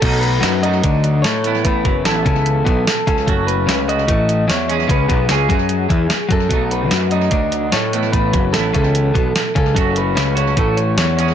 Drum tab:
CC |x-------|--------|--------|--------|
HH |xxxxxxxx|xxxxxxxx|xxxxxxxx|xxxxxxxx|
TB |--x---x-|--x---x-|--x---x-|--x---x-|
SD |--o---o-|--o---o-|--o---o-|--o---o-|
BD |o---o---|oo-o-o-o|o---o---|oo-o-o-o|

CC |--------|--------|--------|
HH |xxxxxxxx|xxxxxxxx|xxxxxxxx|
TB |--x---x-|--x---x-|--x---x-|
SD |--o---o-|--o---o-|--o---o-|
BD |o---o---|oo-o-o-o|o---o---|